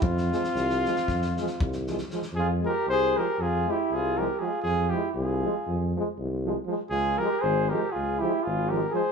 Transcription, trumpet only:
\new Staff \with { instrumentName = "Trumpet" } { \time 9/8 \key f \minor \tempo 4. = 79 f'2.~ f'8 r4 | aes'8 bes'8 c''8 bes'8 aes'8 g'8 aes'8 bes'8 aes'8 | aes'8 g'8 aes'4. r2 | aes'8 bes'8 c''8 bes'8 aes'8 g'8 aes'8 bes'8 c''8 | }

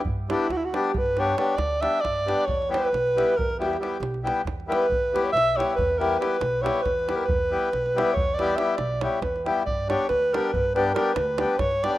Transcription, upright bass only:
\new Staff \with { instrumentName = "Upright bass" } { \clef bass \time 11/8 \tempo 4 = 138 g,4 d,4 g,4. d,4 g,4 | e,4 b,,4 e,4. b,,4 e,4 | e,4 b,,4 e,4. b,,4 e,4 | e,4 b,,4 e,4. b,,4 e,4 |
g,4 d,4 g,4. d,4 g,4 | }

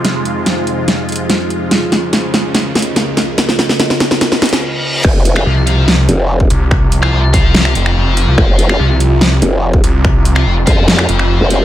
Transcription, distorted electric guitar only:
\new Staff \with { instrumentName = "Distorted electric guitar" } { \time 4/4 \key f \minor \tempo 4 = 144 r1 | r1 | r1 | r8. <f' c'' f''>8 r16 <f' c'' f''>8 r2 |
r8. <f' c'' f''>8 r16 <f' c'' f''>2~ <f' c'' f''>8~ | <f' c'' f''>8. <f' c'' f''>8 r2 r8. | r8. <f' c'' f''>8 r16 <f' c'' f''>2~ <f' c'' f''>8 | }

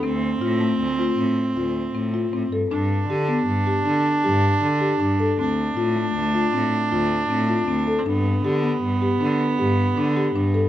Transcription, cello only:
\new Staff \with { instrumentName = "Cello" } { \clef bass \time 7/4 \key g \mixolydian \tempo 4 = 157 d,4 a,4 d,4 a,8 r8 d,4 a,4 a,8 g,8 | g,4 d4 g,4 d8 r8 g,4 d4 g,4 | d,4 a,4 d,4 a,8 r8 d,4 a,4 d,4 | g,4 d4 g,4 d8 r8 g,4 d4 g,4 | }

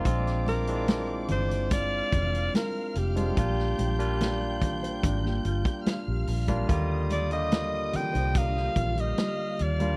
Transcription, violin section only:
\new Staff \with { instrumentName = "Violin section" } { \time 4/4 \key ees \major \tempo 4 = 72 <d'' d'''>2 <f'' f'''>2 | <g'' g'''>2. <f'' f'''>4 | <ees'' ees'''>2~ <ees'' ees'''>8 <f'' f'''>4. | }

